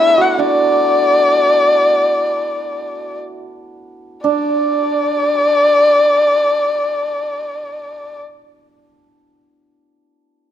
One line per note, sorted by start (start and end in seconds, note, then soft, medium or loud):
0.00 2.02 A3 soft
0.00 1.96 B3 medium
0.00 0.38 D4 medium
0.00 3.39 E4 medium
0.00 0.23 E5 medium
0.18 3.42 F#4 medium
0.18 0.41 F#5 medium
0.38 4.11 D4 medium
0.38 3.18 D5 medium
4.24 8.18 D4 medium
4.24 8.19 D5 medium